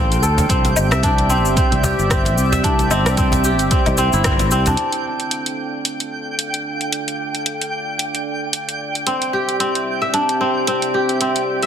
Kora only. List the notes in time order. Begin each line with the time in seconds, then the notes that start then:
Already playing: C4 D4 F5
0.23 A4
0.50 C4
0.91 E5
1.03 D4
1.30 C4
1.57 C4
1.84 G4
2.10 C4
2.52 E5
2.64 D4
2.91 C4
3.18 C4
3.44 G4
3.71 C4
3.98 C4
4.13 E4
4.25 C4
4.52 C4
4.67 D4
9.07 C4
9.33 G4
9.60 C4
10.02 E5
10.14 D4
10.41 C4
10.68 C4
10.94 G4
11.21 C4
11.63 E5